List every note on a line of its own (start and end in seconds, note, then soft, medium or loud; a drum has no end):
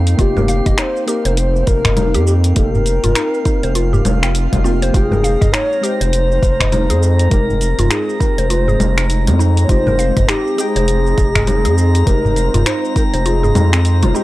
0.00 0.15 F2 loud
0.00 0.15 A#3 medium
0.00 5.71 A#3 medium
0.00 0.16 C4 medium
0.00 4.94 C4 medium
0.00 0.16 D#4 medium
0.00 0.17 D#4 medium
0.00 4.94 D#4 medium
0.00 0.17 G4 medium
0.00 4.94 C5 medium
0.00 4.96 F5 medium
0.00 5.76 G5 medium
0.07 closed hi-hat soft
0.07 shaker soft
0.17 0.61 F1 medium
0.17 1.04 A#3 medium
0.17 1.05 C4 medium
0.17 1.05 D#4 medium
0.17 0.36 F4 medium
0.17 0.80 G4 loud
0.17 kick loud
0.17 closed hi-hat medium
0.17 shaker soft
0.21 1.06 G4 loud
0.37 0.47 A#4 medium
0.37 low conga medium
0.37 udu medium
0.37 shaker soft
0.48 0.59 F5 medium
0.48 closed hi-hat soft
0.48 shaker medium
0.66 0.76 F1 medium
0.66 0.78 D#5 medium
0.66 kick loud
0.66 closed hi-hat soft
0.66 udu medium
0.66 shaker soft
0.78 1.07 D#4 medium
0.78 0.83 C#5 loud
0.78 finger snap medium
0.78 closed hi-hat medium
0.78 shaker soft
0.82 1.07 C5 loud
0.97 shaker soft
1.06 2.53 A#3 medium
1.06 2.53 C4 medium
1.06 2.54 D#4 medium
1.06 1.24 G4 medium
1.06 2.55 G4 medium
1.06 1.39 A#4 loud
1.06 closed hi-hat soft
1.06 shaker medium
1.25 1.64 F1 loud
1.25 1.32 C5 medium
1.25 closed hi-hat soft
1.25 shaker soft
1.37 1.69 C5 loud
1.37 closed hi-hat medium
1.37 shaker soft
1.56 shaker soft
1.67 2.16 F1 medium
1.67 2.26 A#4 loud
1.67 kick loud
1.67 closed hi-hat soft
1.67 shaker medium
1.85 1.96 D#5 medium
1.85 finger snap medium
1.85 kick medium
1.85 closed hi-hat soft
1.85 udu medium
1.85 shaker soft
1.97 2.13 D#4 medium
1.97 closed hi-hat medium
1.97 low conga medium
1.97 shaker soft
2.14 2.53 F2 loud
2.14 2.72 G4 loud
2.14 closed hi-hat soft
2.14 shaker soft
2.27 2.33 G4 medium
2.27 shaker medium
2.44 closed hi-hat soft
2.44 shaker soft
2.55 2.99 F1 loud
2.55 3.42 A#3 medium
2.55 3.42 C4 medium
2.55 3.43 D#4 medium
2.55 2.74 A4 loud
2.55 kick loud
2.55 closed hi-hat medium
2.55 shaker soft
2.59 3.44 G4 medium
2.74 4.31 A#4 loud
2.74 udu medium
2.74 shaker soft
2.86 closed hi-hat soft
2.86 shaker medium
3.04 3.14 F1 loud
3.04 3.15 F4 medium
3.04 closed hi-hat soft
3.04 udu medium
3.04 shaker soft
3.15 3.44 D#4 medium
3.15 finger snap medium
3.15 closed hi-hat medium
3.15 shaker soft
3.34 shaker soft
3.44 4.61 A#3 medium
3.44 4.62 C4 medium
3.44 3.61 D#4 medium
3.44 4.62 D#4 medium
3.44 kick loud
3.44 closed hi-hat soft
3.44 shaker medium
3.48 4.63 G4 medium
3.63 4.02 F1 loud
3.63 3.75 C5 medium
3.63 closed hi-hat soft
3.63 shaker soft
3.75 3.92 F4 medium
3.75 closed hi-hat medium
3.75 swell medium
3.75 shaker soft
3.93 4.04 G4 medium
3.93 udu medium
3.93 shaker soft
4.05 4.48 F1 medium
4.05 closed hi-hat soft
4.05 low conga medium
4.05 shaker medium
4.23 4.33 C4 medium
4.23 finger snap medium
4.23 closed hi-hat soft
4.23 shaker soft
4.35 closed hi-hat medium
4.35 shaker soft
4.53 4.91 F1 loud
4.53 kick medium
4.53 closed hi-hat soft
4.53 low conga medium
4.53 shaker soft
4.64 4.91 A#3 loud
4.64 4.91 C4 medium
4.64 4.92 D#4 medium
4.64 4.81 F4 loud
4.64 4.92 G4 loud
4.64 shaker medium
4.82 4.93 C5 loud
4.82 closed hi-hat soft
4.82 shaker soft
4.92 5.37 F1 medium
4.92 5.79 G#3 medium
4.92 14.23 G#3 medium
4.92 5.80 C4 medium
4.92 5.81 D#4 medium
4.92 5.11 F4 medium
4.92 5.54 G#4 loud
4.92 14.23 A#5 medium
4.92 kick loud
4.92 closed hi-hat medium
4.92 shaker soft
4.96 5.81 G5 loud
5.10 14.23 C4 medium
5.10 5.22 A#4 medium
5.10 udu medium
5.10 low conga medium
5.10 shaker soft
5.24 5.34 F5 medium
5.24 closed hi-hat soft
5.24 shaker medium
5.41 5.51 F1 medium
5.41 5.53 D#5 medium
5.41 kick loud
5.41 closed hi-hat soft
5.41 udu loud
5.41 shaker soft
5.53 5.82 D#4 medium
5.53 5.82 C#5 loud
5.53 finger snap medium
5.53 closed hi-hat medium
5.53 shaker soft
5.68 14.23 D#4 medium
5.68 14.23 F4 medium
5.72 14.23 C5 medium
5.72 shaker soft
5.81 7.28 G#3 medium
5.81 7.28 C4 medium
5.81 7.29 D#4 medium
5.81 5.99 G4 medium
5.81 5.87 C#5 loud
5.81 7.30 G5 medium
5.81 closed hi-hat soft
5.81 shaker medium
5.86 7.32 C5 loud
6.01 6.39 F1 loud
6.01 6.08 C5 medium
6.01 closed hi-hat soft
6.01 shaker soft
6.13 closed hi-hat medium
6.13 shaker soft
6.32 shaker soft
6.42 6.91 F1 medium
6.42 kick loud
6.42 closed hi-hat soft
6.42 shaker medium
6.60 6.72 D#5 medium
6.60 finger snap medium
6.60 kick medium
6.60 closed hi-hat soft
6.60 udu medium
6.60 shaker soft
6.72 6.88 D#4 medium
6.72 closed hi-hat medium
6.72 low conga medium
6.72 shaker soft
6.90 7.28 F2 loud
6.90 7.48 G#4 loud
6.90 closed hi-hat medium
6.90 shaker soft
7.03 shaker medium
7.19 closed hi-hat soft
7.19 shaker soft
7.29 7.74 F1 medium
7.29 8.17 G#3 medium
7.29 8.17 C4 medium
7.29 8.18 D#4 medium
7.29 7.92 A#4 loud
7.29 kick loud
7.29 closed hi-hat medium
7.29 shaker soft
7.33 8.19 G4 loud
7.50 udu medium
7.50 shaker soft
7.61 closed hi-hat soft
7.61 shaker medium
7.79 7.89 F1 loud
7.79 7.90 F4 medium
7.79 closed hi-hat soft
7.79 udu loud
7.79 shaker soft
7.90 8.19 D#4 medium
7.90 8.22 G#4 medium
7.90 finger snap medium
7.90 closed hi-hat medium
7.90 shaker soft
8.09 shaker soft
8.19 9.65 G#3 medium
8.19 9.66 C4 medium
8.19 8.36 D#4 medium
8.19 9.67 D#4 medium
8.19 9.67 G4 medium
8.19 8.49 A#4 medium
8.19 kick loud
8.19 closed hi-hat soft
8.19 shaker medium
8.38 8.76 F1 loud
8.38 8.50 C5 medium
8.38 closed hi-hat soft
8.38 shaker soft
8.50 8.67 F4 medium
8.50 9.06 C5 loud
8.50 closed hi-hat medium
8.50 shaker soft
8.68 8.79 G#4 medium
8.68 udu medium
8.68 shaker soft
8.80 9.28 F1 loud
8.80 closed hi-hat soft
8.80 low conga medium
8.80 shaker medium
8.98 finger snap medium
8.98 closed hi-hat soft
8.98 shaker soft
9.10 closed hi-hat medium
9.10 shaker medium
9.27 9.66 F2 loud
9.27 closed hi-hat soft
9.27 low conga medium
9.27 shaker soft
9.39 9.68 D#4 medium
9.39 shaker medium
9.57 closed hi-hat soft
9.57 shaker soft
9.64 10.55 G#3 medium
9.64 9.71 C#5 medium
9.69 10.12 F1 medium
9.69 10.55 C4 medium
9.69 10.56 D#4 medium
9.69 9.86 F4 medium
9.69 10.57 G4 loud
9.69 10.30 C5 loud
9.69 kick loud
9.69 closed hi-hat medium
9.69 shaker soft
9.86 9.98 A#4 medium
9.86 udu medium
9.86 low conga medium
9.86 shaker soft
9.99 10.09 F5 medium
9.99 closed hi-hat soft
9.99 shaker medium
10.17 10.27 F1 loud
10.17 10.28 D#5 medium
10.17 kick loud
10.17 closed hi-hat soft
10.17 udu loud
10.17 shaker soft
10.29 10.57 D#4 medium
10.29 10.60 G4 loud
10.29 finger snap medium
10.29 closed hi-hat medium
10.29 shaker soft
10.47 shaker soft
10.56 12.03 G#3 medium
10.56 12.04 C4 medium
10.56 12.04 D#4 medium
10.56 10.74 G4 medium
10.56 12.09 G#4 loud
10.56 12.05 G5 medium
10.56 closed hi-hat soft
10.56 shaker medium
10.76 11.14 F1 loud
10.76 10.83 C5 medium
10.76 closed hi-hat soft
10.76 shaker soft
10.88 closed hi-hat medium
10.88 shaker soft
11.07 shaker soft
11.18 11.67 F1 loud
11.18 kick loud
11.18 closed hi-hat soft
11.18 shaker medium
11.35 11.47 D#5 medium
11.35 finger snap medium
11.35 kick medium
11.35 closed hi-hat soft
11.35 udu loud
11.35 shaker soft
11.47 11.64 D#4 medium
11.47 closed hi-hat medium
11.47 low conga medium
11.47 shaker soft
11.65 12.03 F2 loud
11.65 12.23 G#4 loud
11.65 closed hi-hat soft
11.65 shaker soft
11.78 shaker medium
11.95 closed hi-hat soft
11.95 shaker soft
12.05 12.49 F1 loud
12.05 12.92 G#3 medium
12.05 12.93 C4 medium
12.05 12.94 D#4 medium
12.05 12.94 G4 loud
12.05 12.68 A#4 loud
12.05 kick loud
12.05 closed hi-hat medium
12.05 shaker soft
12.25 udu loud
12.25 shaker soft
12.36 closed hi-hat soft
12.36 shaker medium
12.54 12.64 F1 loud
12.54 12.66 F4 medium
12.54 closed hi-hat soft
12.54 udu loud
12.54 shaker soft
12.66 12.95 D#4 medium
12.66 12.95 C5 loud
12.66 finger snap medium
12.66 closed hi-hat medium
12.66 shaker soft
12.85 shaker soft
12.94 14.12 G#3 medium
12.94 14.12 C4 medium
12.94 13.12 D#4 medium
12.94 14.13 D#4 medium
12.94 13.03 A#4 medium
12.94 14.13 G5 medium
12.94 kick loud
12.94 closed hi-hat soft
12.94 shaker medium
13.13 13.52 F1 loud
13.13 13.25 C5 medium
13.13 closed hi-hat soft
13.13 shaker soft
13.26 13.43 F4 medium
13.26 13.81 G#4 medium
13.26 closed hi-hat medium
13.26 shaker soft
13.43 13.55 G#4 medium
13.43 udu loud
13.43 shaker soft
13.55 14.05 F2 medium
13.55 13.72 D#4 medium
13.55 closed hi-hat soft
13.55 low conga medium
13.55 shaker medium
13.73 13.84 C4 medium
13.73 finger snap medium
13.73 closed hi-hat soft
13.73 shaker soft
13.85 closed hi-hat medium
13.85 shaker soft
14.03 14.13 F1 loud
14.03 14.14 F4 medium
14.03 closed hi-hat soft
14.03 low conga medium
14.03 shaker soft
14.14 14.23 G#3 medium
14.14 14.23 C4 medium
14.14 14.23 D#4 medium
14.14 14.23 G4 loud
14.14 shaker medium